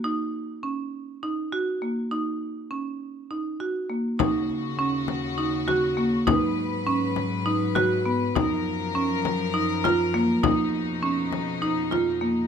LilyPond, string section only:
\new Staff \with { instrumentName = "String section" } { \clef bass \time 7/8 \key ees \minor \tempo 4 = 101 r2. r8 | r2. r8 | <ees, des ges'>2.~ <ees, des ges'>8 | <aes, ges ces''>2.~ <aes, ges ces''>8 |
<ges, f bes'>2.~ <ges, f bes'>8 | <f, ces ees'>2.~ <f, ces ees'>8 | }